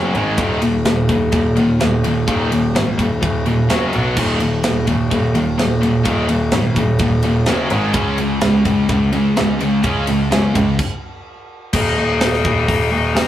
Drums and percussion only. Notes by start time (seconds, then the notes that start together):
0.15 ride
0.38 kick, ride
0.62 ride
0.85 snare, ride
1.09 kick, ride
1.32 kick, ride
1.56 ride
1.80 snare, ride
2.04 ride
2.28 kick, ride
2.52 ride
2.76 snare, ride
2.99 kick, ride
3.22 kick, ride
3.46 ride
3.70 snare, ride
3.93 ride
4.17 kick, crash
4.40 ride
4.63 snare, ride
4.87 kick, ride
5.11 kick, ride
5.35 ride
5.59 snare, ride
5.83 ride
6.05 kick, ride
6.29 ride
6.52 snare, ride
6.76 kick, ride
6.99 kick, ride
7.23 ride
7.46 snare, ride
7.70 ride
7.93 kick, ride
8.18 ride
8.41 snare, ride
8.65 kick, ride
8.89 kick, ride
9.13 ride
9.37 snare, ride
9.60 ride
9.83 kick, ride
10.07 ride
10.32 snare, ride
10.55 kick, ride
10.79 kick, crash
11.73 kick, crash
12.21 snare, open hi-hat
12.33 snare
12.45 kick
12.68 kick, open hi-hat
13.16 snare, open hi-hat